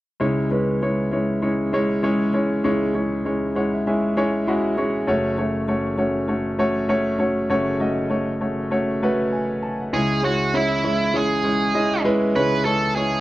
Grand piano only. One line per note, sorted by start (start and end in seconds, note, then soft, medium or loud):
0.21 2.60 C#2 medium
0.21 2.60 C#3 soft
0.21 0.50 G#3 medium
0.21 0.50 C#4 medium
0.21 0.50 E4 medium
0.21 0.50 C#5 medium
0.51 0.80 G#3 medium
0.51 0.80 C#4 medium
0.51 0.80 E4 medium
0.51 0.80 B4 medium
0.82 1.10 G#3 medium
0.82 1.10 C#4 medium
0.82 1.11 E4 medium
0.82 1.11 C#5 medium
1.12 1.40 G#3 medium
1.12 1.41 C#4 medium
1.12 1.41 E4 medium
1.12 1.41 C#5 medium
1.42 1.71 G#3 medium
1.42 1.71 C#4 medium
1.42 1.71 E4 medium
1.42 1.71 C#5 medium
1.73 2.01 G#3 medium
1.73 2.01 C#4 medium
1.73 2.02 E4 medium
1.73 2.02 C#5 medium
2.03 2.31 G#3 medium
2.03 2.32 C#4 medium
2.03 2.32 E4 medium
2.03 2.32 C#5 medium
2.33 2.62 G#3 medium
2.33 2.62 C#4 medium
2.33 2.62 E4 medium
2.33 2.63 C#5 medium
2.64 5.03 C#2 medium
2.64 5.03 C#3 medium
2.64 2.93 G#3 medium
2.64 2.93 C#4 medium
2.64 2.93 E4 medium
2.64 2.93 C#5 medium
2.94 3.23 G#3 medium
2.94 3.23 C#4 medium
2.94 3.23 E4 medium
2.94 3.23 C#5 medium
3.25 3.54 G#3 medium
3.25 3.54 C#4 medium
3.25 3.54 E4 medium
3.25 3.54 C#5 medium
3.55 3.84 G#3 medium
3.55 3.84 C#4 medium
3.55 3.84 E4 medium
3.55 3.84 C#5 medium
3.55 3.71 F#5 medium
3.73 3.85 E5 medium
3.87 4.15 G#3 medium
3.87 4.15 C#4 medium
3.87 4.15 E4 medium
3.87 4.15 E5 medium
3.87 4.15 G#5 medium
4.16 4.45 G#3 medium
4.16 4.45 C#4 medium
4.16 4.45 E4 medium
4.16 4.45 C#5 medium
4.16 4.45 G#5 medium
4.47 4.76 G#3 medium
4.47 4.76 C#4 medium
4.47 4.76 E4 medium
4.47 4.76 F#4 medium
4.47 4.75 B5 medium
4.77 5.06 G#3 medium
4.77 5.06 C#4 medium
4.77 5.06 E4 medium
4.77 5.06 C#5 medium
4.77 5.06 C#6 medium
5.07 7.47 F#1 medium
5.07 7.46 F#2 medium
5.07 5.36 A3 medium
5.07 5.36 C#4 medium
5.07 5.36 F#4 medium
5.07 5.36 C#5 medium
5.38 5.66 A3 medium
5.38 5.67 C#4 medium
5.38 5.67 F#4 medium
5.38 5.67 C#5 medium
5.68 5.96 A3 medium
5.68 5.97 C#4 medium
5.68 5.97 F#4 medium
5.68 5.97 C#5 medium
5.98 6.27 A3 medium
5.98 6.27 C#4 medium
5.98 6.27 F#4 medium
5.98 6.27 C#5 medium
6.28 6.57 A3 medium
6.28 6.57 C#4 medium
6.28 6.58 F#4 medium
6.28 6.58 C#5 medium
6.59 6.87 A3 medium
6.59 6.87 C#4 medium
6.59 6.88 F#4 medium
6.59 6.88 C#5 medium
6.89 7.17 A3 medium
6.89 7.17 C#4 medium
6.89 7.18 F#4 medium
6.89 7.18 C#5 loud
7.19 7.48 A3 medium
7.19 7.48 C#4 medium
7.19 7.48 F#4 medium
7.19 7.48 C#5 medium
7.50 9.89 F#1 medium
7.50 9.89 F#2 medium
7.50 7.78 A3 medium
7.50 7.79 C#4 medium
7.50 7.79 F#4 medium
7.50 7.79 C#5 medium
7.80 8.08 A3 medium
7.80 8.09 C#4 medium
7.80 8.09 F#4 medium
7.80 8.09 D#5 medium
8.10 8.39 A3 medium
8.10 8.39 C#4 medium
8.10 8.39 F#4 medium
8.10 8.40 C#5 medium
8.41 8.69 A3 medium
8.41 8.70 C#4 medium
8.41 8.70 F#4 medium
8.41 8.70 C#5 medium
8.71 9.00 A3 medium
8.71 9.00 C#4 medium
8.71 9.00 F#4 medium
8.71 9.00 C#5 medium
9.03 9.31 A3 medium
9.03 9.31 C#4 medium
9.03 9.31 F#4 medium
9.03 9.31 B4 medium
9.32 9.61 G#5 soft
9.62 9.79 A5 medium
9.80 10.09 F#5 medium
9.93 12.32 C#2 soft
9.93 12.32 C#3 soft
9.93 10.21 G#3 medium
9.93 10.22 C#4 medium
9.93 10.22 E4 medium
9.93 10.22 C#5 medium
10.23 10.52 G#3 medium
10.23 10.52 C#4 medium
10.23 10.52 E4 soft
10.23 10.52 C#5 medium
10.53 10.82 G#3 medium
10.53 10.82 C#4 medium
10.53 10.82 E4 medium
10.53 10.83 C#5 medium
10.84 11.12 G#3 medium
10.84 11.12 C#4 medium
10.84 11.12 E4 medium
10.84 11.13 C#5 medium
11.14 11.42 G#3 medium
11.14 11.42 C#4 medium
11.14 11.43 E4 medium
11.14 11.43 C#5 medium
11.44 11.73 G#3 medium
11.44 11.73 C#4 medium
11.44 11.73 E4 medium
11.44 11.73 C#5 medium
11.74 12.03 G#3 medium
11.74 12.03 C#4 medium
11.74 12.03 E4 medium
11.74 12.04 D#5 medium
12.04 12.34 G#3 loud
12.04 12.34 C#4 medium
12.04 12.34 E4 medium
12.04 12.34 B4 loud
12.36 13.21 C#2 medium
12.36 13.21 C#3 soft
12.36 12.64 G#3 medium
12.36 12.64 C#4 medium
12.36 12.64 E4 medium
12.36 12.65 C#5 medium
12.65 12.94 G#3 medium
12.65 12.95 C#4 medium
12.65 12.95 E4 medium
12.65 12.95 C#5 medium
12.97 13.21 G#3 medium
12.97 13.21 C#4 medium
12.97 13.21 E4 medium
12.97 13.21 C#5 medium